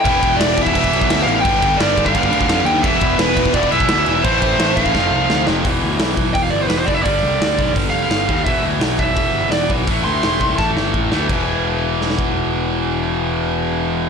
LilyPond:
<<
  \new Staff \with { instrumentName = "Lead electric guitar" } { \time 4/4 \key e \phrygian \tempo 4 = 170 g''4 d''8. e''4.~ e''16 f''8 | g''4 d''8. f''4.~ f''16 g''8 | e''4 b'4 d''8 e''4. | c''4. f''2 r8 |
r2 g''16 f''16 d''16 c''16 b'16 c''16 d''16 e''16 | d''2 r8 f''4. | e''8 r4 e''4. d''8 r8 | r8 c'''4. a''8 r4. |
r1 | r1 | }
  \new Staff \with { instrumentName = "Distorted electric guitar" } { \time 4/4 \key e \phrygian <e g b e'>2 <e g b e'>2 | <g, d g b d'>2 <g, d g b d'>2 | <e g b e'>2 <e g b e'>2 | <a, e a c' e'>2 <f a c' f'>2 |
r1 | r1 | r1 | r1 |
r1 | r1 | }
  \new Staff \with { instrumentName = "Distorted electric guitar" } { \clef bass \time 4/4 \key e \phrygian <e, b, e>2 <e, b, e>2 | <g, d g>2 <g, d g>2 | <e, b, e>2 <e, b, e>2 | <a, e a>2 <f, c f>2 |
<e, b, e>2.~ <e, b, e>8 <e, b, e>8 | <g, d g>2.~ <g, d g>8 <g, d g>8 | <e, b, e>2.~ <e, b, e>8 <e, b, e>8 | <a, e a>2.~ <a, e a>8 <a, e a>8 |
<e, b, e>1~ | <e, b, e>1 | }
  \new Staff \with { instrumentName = "Distorted electric guitar" } { \clef bass \time 4/4 \key e \phrygian <e, b, e>2~ <e, b, e>8 <e, b, e>8 <e, b, e>4 | <g, d g>2~ <g, d g>8 <g, d g>8 <g, d g>4 | <e, b, e>2~ <e, b, e>8 <e, b, e>8 <e, b, e>4 | <a, e a>2 <f, c f>2 |
<e, b, e>2.~ <e, b, e>8 <e, b, e>8 | <g, d g>2.~ <g, d g>8 <g, d g>8 | <e, b, e>2.~ <e, b, e>8 <e, b, e>8 | <a, e a>2.~ <a, e a>8 <a, e a>8 |
<e, b, e>1~ | <e, b, e>1 | }
  \new Staff \with { instrumentName = "Picked electric bass" } { \clef bass \time 4/4 \key e \phrygian e,,8 e,,8 e,,8 e,,8 e,,8 b,,8 d,8 a,,8 | g,,8 g,,8 g,,8 g,,8 g,,8 d,8 f,8 dis,8 | e,,8 e,,8 e,,8 e,,8 e,,8 b,,8 d,8 e,,8 | a,,8 a,,8 a,,8 a,,8 f,,8 c,8 d,8 f,,8 |
e,,8 d,8 b,,8 b,,8 e,,8 g,,8 e,,8 fis,,8 | g,,8 c,8 d,8 b,,8 g,,8 f,,8 g,,8 dis,8 | e,,8 d,8 b,,8 b,,8 e,,8 g,,8 e,,8 b,,8 | a,,8 d,8 e,,8 c,8 a,,8 g,,8 a,,8 d,8 |
e,,1~ | e,,1 | }
  \new DrumStaff \with { instrumentName = "Drums" } \drummode { \time 4/4 <cymc bd>8 <cymc bd>8 <cymc sn>8 <cymc bd>16 bd16 <cymc bd>16 bd16 cymc16 bd16 <cymc sn>8 cymc8 | <cymc bd>8 <cymc bd>8 <cymc sn>8 <cymc bd>16 bd16 <cymc bd>16 bd16 cymc16 bd16 <cymc sn>8 cymc8 | <cymc bd>8 <cymc bd>8 <cymc sn>8 <cymc bd>16 bd16 <cymc bd>16 bd16 cymc16 bd16 <cymc sn>8 cymc8 | <cymc bd>8 <cymc bd>8 <cymc sn>8 <cymc bd>16 bd16 <bd sn>4 sn8 sn8 |
<hho bd>4 <hho sn>8 bd8 <hho bd>4 <hho sn>8 bd8 | <hho bd>4 <hho sn>8 bd8 <hho bd>4 <hho sn>8 bd8 | <hho bd>4 <hho sn>8 bd8 <hho bd>4 <hho sn>8 bd8 | <hho bd>4 <hho sn>8 bd8 <bd sn>8 sn8 bd8 sn8 |
<cymc bd>4 r4 sn16 sn16 bd8 r4 | r4 r4 r4 r4 | }
>>